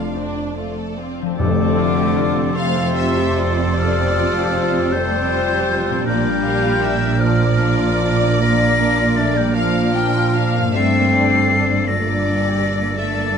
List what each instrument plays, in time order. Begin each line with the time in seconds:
Already playing: double bass section F1, cello section F2, harp F3 D4 F4 A4 G5, violin section D4 D5 F5
0.15 violin section C4, viola section D4, harp C5
0.37 violin section D4
0.57 viola section A3, violin section F4, harp D5
0.78 violin section A4
0.99 viola section C4, harp F4, violin section F4
1.20 harp F3, violin section D4
1.26 harp A3
1.31 harp C4
1.35 double bass section F1, cello section F2, french horn section D3, harp G4, clarinet G4, oboe A4, violin section C5, flute D6
1.39 timpani F2, viola section A3
1.60 viola section C4
1.79 viola section F4
1.98 viola section G4
2.17 viola section F4
2.36 viola section C4
2.54 french horn section C3, viola section A3, violin section F5, flute C6
2.76 viola section C4
2.96 viola section F4, violin section E5
3.18 viola section G4
3.38 viola section F4, violin section D5
3.59 viola section C4
3.77 french horn section F3, viola section A3, flute F6
3.99 viola section C4
4.17 viola section F4
4.37 viola section G4
4.55 viola section F4
4.75 viola section C4
4.92 french horn section G3, viola section A3, violin section C5, flute G6
5.13 viola section C4
5.33 viola section F4
5.52 viola section G4
5.71 viola section F4
5.89 harp A#2, viola section C4
5.94 harp A#3
5.98 harp D4
6.03 double bass section A#1, cello section A#2, french horn section G3, clarinet D4, harp F4, oboe A#4, violin section D5, flute G6
6.08 viola section F3 A#3, violin section D5
6.27 viola section A#3
6.44 viola section D4, violin section F5
6.65 viola section F4
6.83 viola section D4, violin section E5
7.03 viola section A#3
7.20 french horn section F3, viola section F3, violin section D5, flute F6
7.42 viola section A#3
7.60 viola section D4
7.81 viola section F4
8.02 viola section D4
8.22 viola section A#3
8.41 viola section F3, french horn section A#3, flute A#6
8.61 viola section A#3
8.79 viola section D4
8.98 viola section F4
9.16 french horn section A3, viola section D4, flute A6
9.34 french horn section G3, viola section A#3, flute G6
9.54 french horn section F3, viola section F3, violin section F5, flute F6
9.74 viola section A#3
9.93 viola section D4, violin section G5
10.15 viola section F4
10.35 viola section D4, violin section F5
10.56 harp G2, viola section A#3
10.62 harp A3
10.67 harp D4
10.71 french horn section C4, clarinet D4, harp G4, violin section D5 E5, flute C7
10.76 double bass section G1, cello section G2, viola section A3, oboe A4
10.96 viola section A#3
11.13 viola section D4, violin section D5
11.34 viola section G4
11.51 viola section D4, violin section C5
11.71 viola section A#3
11.88 french horn section A#2, viola section A3, clarinet D4, oboe A4, violin section D5, flute A#6
12.08 viola section A#3
12.26 viola section D4
12.45 viola section G4
12.63 viola section D4
12.81 viola section A#3
12.97 viola section A3, clarinet D4, french horn section A4, oboe A4, violin section E5, flute A6
13.18 viola section A#3